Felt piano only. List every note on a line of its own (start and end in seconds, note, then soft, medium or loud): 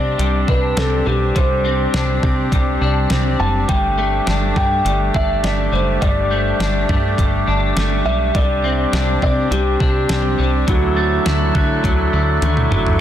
0.00 0.50 D5 loud
0.48 0.78 B4 medium
0.78 1.05 A4 medium
1.07 1.34 G4 medium
1.37 2.49 C5 medium
3.40 3.70 A5 medium
3.69 4.23 G5 medium
4.57 5.11 G5 medium
5.16 5.45 E5 medium
5.45 5.74 D5 medium
5.73 6.03 C5 medium
6.02 7.14 D5 medium
8.05 8.36 E5 medium
8.36 9.21 D5 loud
9.23 9.50 D5 medium
9.52 10.71 G4 medium
10.69 12.39 F#4 medium